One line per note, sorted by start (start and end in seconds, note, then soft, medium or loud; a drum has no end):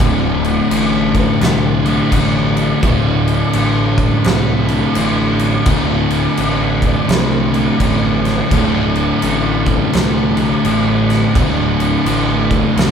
0.00 0.59 D1 loud
0.00 1.87 D2 loud
0.00 1.83 A2 medium
0.00 1.84 D3 loud
0.00 kick loud
0.00 crash medium
0.44 crash medium
0.71 1.30 A1 loud
0.71 crash loud
1.15 kick medium
1.15 crash medium
1.41 2.00 C2 medium
1.41 snare loud
1.41 crash medium
1.84 2.12 D2 medium
1.84 2.10 A2 medium
1.84 2.14 D3 medium
1.84 crash medium
2.12 2.72 A1 loud
2.12 2.81 D2 medium
2.12 2.82 A2 medium
2.12 2.83 D3 medium
2.12 kick medium
2.12 crash loud
2.57 crash medium
2.81 3.42 D1 loud
2.81 4.69 D2 medium
2.81 4.66 A2 loud
2.81 4.67 D3 loud
2.81 kick loud
2.81 crash medium
3.28 crash medium
3.53 4.13 A1 loud
3.53 crash medium
3.98 kick medium
3.98 crash medium
4.24 4.84 C2 medium
4.24 snare loud
4.24 crash medium
4.67 4.94 D2 medium
4.67 4.93 A2 medium
4.67 4.96 D3 medium
4.67 crash medium
4.94 5.55 A1 loud
4.94 5.64 D2 medium
4.94 5.65 A2 medium
4.94 5.67 D3 medium
4.94 crash loud
5.39 crash medium
5.65 6.26 D1 loud
5.65 7.54 D2 medium
5.65 7.50 A2 loud
5.65 7.51 D3 loud
5.65 kick loud
5.65 crash loud
6.10 crash medium
6.37 6.97 A1 medium
6.37 crash loud
6.82 kick medium
6.82 crash medium
7.08 7.68 C2 loud
7.08 snare loud
7.08 crash medium
7.52 7.78 D2 medium
7.52 7.78 A2 medium
7.52 7.80 D3 medium
7.52 crash medium
7.78 8.39 A1 loud
7.78 8.49 D2 medium
7.78 8.49 A2 medium
7.78 8.52 D3 medium
7.78 kick medium
7.78 crash loud
8.25 snare soft
8.25 crash medium
8.50 9.11 D1 loud
8.50 10.38 D2 medium
8.50 10.35 A2 loud
8.50 10.35 D3 loud
8.50 kick loud
8.50 crash medium
8.95 crash medium
9.22 9.82 A1 loud
9.22 crash medium
9.66 kick medium
9.66 crash medium
9.93 10.53 C2 loud
9.93 snare loud
9.93 crash medium
10.36 10.63 D2 medium
10.36 10.62 A2 medium
10.36 10.65 D3 loud
10.36 crash medium
10.63 11.24 A1 loud
10.63 11.33 D2 medium
10.63 11.34 A2 medium
10.63 11.36 D3 medium
10.63 crash medium
11.10 snare soft
11.10 crash medium
11.34 11.95 D1 loud
11.34 12.91 D2 medium
11.34 12.91 A2 loud
11.34 12.91 D3 loud
11.34 kick loud
11.34 crash medium
11.80 crash medium
12.05 12.65 A1 medium
12.05 crash medium
12.51 kick medium
12.51 crash medium
12.76 12.91 C2 loud
12.76 snare loud
12.76 crash medium